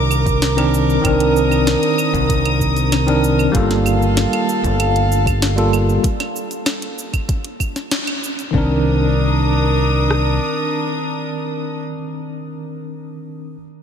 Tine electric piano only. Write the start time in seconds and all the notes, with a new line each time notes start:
Already playing: D#3 C4 D4 A#4
0.57 D#3 C4 D4 A#4
1.02 D#3 C4 D4
1.06 A#4
3.06 D#3 C4 D4 A#4
3.52 G3 A#3 F4
3.57 A4
5.56 G3 A#3 F4 A4
8.51 D#3 C4
8.55 D4 A#4